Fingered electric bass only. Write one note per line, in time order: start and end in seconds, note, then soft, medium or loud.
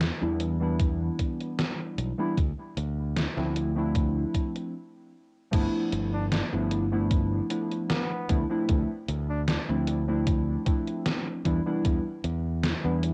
0.22 1.08 E2 medium
1.98 2.11 B1 medium
2.37 2.51 D2 loud
2.77 3.25 D2 medium
3.37 4.24 D2 medium
5.53 5.66 G1 loud
5.93 6.41 G1 medium
6.53 7.40 G1 medium
8.29 8.43 D2 medium
8.69 8.82 D2 loud
9.08 9.56 D2 medium
9.69 10.55 D2 medium
11.45 11.59 E2 medium
11.85 11.98 E2 loud
12.24 12.72 E2 medium
12.85 13.13 E2 medium